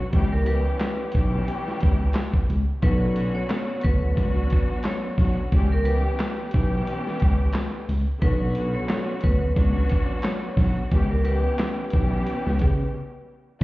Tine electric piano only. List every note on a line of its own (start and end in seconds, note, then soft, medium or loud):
0.13 0.66 C#2 loud
1.15 1.41 B1 medium
1.83 2.09 C#2 medium
2.49 2.65 C#2 medium
2.83 3.36 B1 loud
3.85 4.11 D2 medium
4.17 4.44 C#2 medium
5.18 5.34 B1 medium
5.53 6.05 C#2 loud
6.54 6.80 B1 medium
7.22 7.48 C#2 medium
7.89 8.04 C#2 medium
8.22 8.75 B1 loud
9.24 9.50 D2 medium
9.57 9.83 C#2 loud
10.57 10.73 B1 medium
10.92 11.45 C#2 loud
11.94 12.20 B1 medium
12.46 12.57 C#2 medium
12.62 12.88 C#3 loud